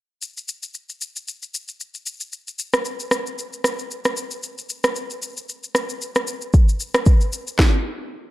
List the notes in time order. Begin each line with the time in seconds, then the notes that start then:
0.22 shaker
0.37 shaker
0.48 shaker
0.63 shaker
0.74 shaker
0.89 shaker
1.01 shaker
1.16 shaker
1.28 shaker
1.42 shaker
1.54 shaker
1.68 shaker
1.80 shaker
1.94 shaker
2.06 shaker
2.20 shaker
2.33 shaker
2.48 shaker
2.59 shaker
2.73 cross-stick, shaker
2.85 shaker
3.00 shaker
3.11 cross-stick, shaker
3.27 shaker
3.39 shaker
3.53 shaker
3.64 cross-stick, shaker
3.79 shaker
3.91 shaker
4.05 cross-stick, shaker
4.17 shaker
4.31 shaker
4.43 shaker
4.58 shaker
4.69 shaker
4.84 cross-stick, shaker
4.96 shaker
5.10 shaker
5.22 shaker
5.37 shaker
5.49 shaker
5.64 shaker
5.75 cross-stick, shaker
5.89 shaker
6.02 shaker
6.15 cross-stick, shaker
6.27 shaker
6.41 shaker
6.54 kick, shaker
6.69 shaker
6.80 shaker
6.94 cross-stick, shaker
7.06 kick, shaker
7.21 shaker
7.33 shaker
7.47 shaker
7.59 kick, snare